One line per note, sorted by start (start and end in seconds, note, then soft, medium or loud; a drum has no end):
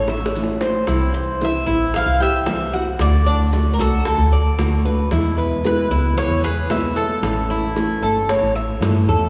0.00 0.85 A1 medium
0.00 0.59 C#5 medium
0.08 0.61 E5 medium
0.08 muted steel-string acoustic guitar stroke medium
0.08 high bongo medium
0.08 maracas soft
0.26 high bongo medium
0.36 0.62 E3 medium
0.36 0.62 A3 medium
0.36 0.62 C#4 medium
0.36 0.62 E4 medium
0.36 maracas medium
0.44 low bongo medium
0.61 0.89 C#4 soft
0.61 0.88 E4 soft
0.61 0.87 C5 medium
0.61 low bongo medium
0.61 maracas soft
0.65 0.89 A3 soft
0.87 1.64 C2 loud
0.87 1.40 C3 medium
0.87 1.40 E3 medium
0.87 1.41 G3 medium
0.87 1.41 C4 medium
0.87 1.14 E4 medium
0.87 1.41 E4 medium
0.87 high bongo medium
0.87 maracas medium
1.14 1.66 C5 medium
1.14 high bongo soft
1.14 maracas soft
1.41 1.67 C3 medium
1.41 1.67 E3 medium
1.41 1.67 G3 medium
1.41 1.68 C4 medium
1.41 1.68 E4 medium
1.41 1.96 E5 medium
1.41 high bongo medium
1.41 maracas medium
1.67 2.05 A1 medium
1.67 1.95 C4 soft
1.67 2.19 E4 medium
1.67 1.94 E4 soft
1.67 high bongo soft
1.67 maracas soft
1.71 1.95 G3 soft
1.94 2.21 E3 soft
1.94 2.20 G3 soft
1.94 2.21 C4 soft
1.94 2.21 E4 medium
1.94 2.20 F5 loud
1.94 high bongo medium
1.94 maracas medium
2.06 2.96 C2 medium
2.20 2.46 G4 medium
2.20 2.71 E5 medium
2.20 muted steel-string acoustic guitar stroke medium
2.20 high bongo soft
2.20 maracas soft
2.46 2.73 C3 medium
2.46 2.73 E3 medium
2.46 2.73 G3 medium
2.46 2.74 C4 medium
2.46 2.74 E4 medium
2.46 2.73 E5 medium
2.46 high bongo medium
2.46 low bongo medium
2.46 maracas medium
2.73 3.00 C4 soft
2.73 3.00 E4 soft
2.73 3.25 F#4 medium
2.73 maracas soft
2.77 3.01 G3 soft
2.99 3.75 D2 loud
2.99 3.53 D3 medium
2.99 3.53 A3 medium
2.99 3.53 D4 medium
2.99 3.73 D5 loud
2.99 high bongo medium
2.99 maracas medium
3.04 3.54 F#4 medium
3.26 3.78 D4 medium
3.26 high bongo soft
3.26 maracas soft
3.53 3.79 D3 medium
3.53 3.79 A3 medium
3.53 3.80 D4 medium
3.53 3.79 F#4 medium
3.53 high bongo medium
3.53 maracas medium
3.74 3.80 A#4 medium
3.79 4.17 C2 medium
3.79 4.06 A3 soft
3.79 4.06 D4 soft
3.79 4.05 F#4 medium
3.79 4.05 F#4 soft
3.79 4.82 A4 medium
3.79 high bongo soft
3.79 maracas soft
4.05 4.32 D3 soft
4.05 4.32 A3 medium
4.05 4.33 D4 soft
4.05 4.33 F#4 soft
4.05 4.32 A4 medium
4.05 high bongo medium
4.05 maracas medium
4.18 5.08 D2 medium
4.33 4.84 D5 medium
4.33 muted steel-string acoustic guitar stroke medium
4.33 maracas soft
4.59 4.84 D3 medium
4.59 4.85 A3 medium
4.59 4.85 D4 medium
4.59 4.85 F#4 medium
4.59 high bongo medium
4.59 low bongo medium
4.59 maracas medium
4.85 5.12 A3 soft
4.85 5.12 D4 soft
4.85 5.11 F#4 soft
4.85 5.11 B4 medium
4.85 high bongo soft
4.85 maracas soft
5.11 5.87 E2 loud
5.11 5.63 B2 medium
5.11 5.64 E3 medium
5.11 5.64 G#3 medium
5.11 5.65 B3 medium
5.11 5.37 E4 medium
5.11 5.65 E4 medium
5.11 high bongo medium
5.11 maracas medium
5.38 5.89 B4 medium
5.38 high bongo soft
5.38 maracas soft
5.64 5.90 B2 medium
5.64 5.90 E3 medium
5.64 5.91 G#3 medium
5.64 5.90 B3 medium
5.64 5.89 E4 medium
5.64 6.18 B4 medium
5.64 high bongo medium
5.64 maracas medium
5.91 6.29 C#2 medium
5.91 6.16 G#3 soft
5.91 6.16 B3 soft
5.91 6.43 E4 medium
5.91 high bongo soft
5.91 maracas soft
6.16 6.42 E3 soft
6.16 6.43 G#3 soft
6.16 6.43 B3 soft
6.16 6.43 E4 medium
6.16 6.44 C#5 loud
6.16 high bongo medium
6.16 maracas medium
6.30 7.19 E2 medium
6.43 6.70 G#4 medium
6.43 6.94 B4 medium
6.43 muted steel-string acoustic guitar stroke medium
6.43 high bongo soft
6.43 maracas soft
6.69 6.95 B2 medium
6.69 6.96 E3 medium
6.69 6.96 G#3 medium
6.69 6.96 B3 medium
6.69 6.94 E4 medium
6.69 6.96 E5 medium
6.69 high bongo medium
6.69 low bongo medium
6.69 maracas medium
6.96 7.23 G#3 soft
6.96 7.23 B3 soft
6.96 7.22 E4 soft
6.96 8.78 A4 medium
6.96 7.49 A4 medium
6.96 maracas soft
7.22 7.99 A1 loud
7.22 7.74 E3 medium
7.22 7.74 A3 medium
7.22 7.75 C#4 medium
7.22 7.76 E4 medium
7.22 high bongo medium
7.22 maracas medium
7.50 8.01 E4 medium
7.50 high bongo soft
7.50 maracas soft
7.75 8.01 E3 medium
7.75 8.01 A3 medium
7.75 8.02 C#4 medium
7.75 8.01 E4 medium
7.75 high bongo medium
7.75 maracas medium
8.02 8.40 G1 medium
8.02 8.27 A3 soft
8.02 8.28 C#4 soft
8.02 8.28 E4 medium
8.02 8.28 A4 medium
8.02 high bongo soft
8.02 maracas soft
8.28 8.53 E3 soft
8.28 8.53 A3 soft
8.28 8.54 C#4 medium
8.28 8.54 E4 soft
8.28 8.55 C#5 medium
8.28 high bongo medium
8.28 maracas medium
8.42 8.80 A1 medium
8.54 9.07 E5 medium
8.54 muted steel-string acoustic guitar stroke medium
8.54 maracas soft
8.80 9.06 G2 medium
8.80 9.07 E3 medium
8.80 9.07 A3 medium
8.80 9.08 C#4 medium
8.80 9.07 E4 medium
8.80 high bongo medium
8.80 low bongo medium
8.80 maracas medium
9.08 9.29 E2 medium
9.08 9.29 A3 soft
9.08 9.29 C#4 soft
9.08 9.29 E4 soft
9.08 9.29 A4 medium
9.08 high bongo soft
9.08 maracas soft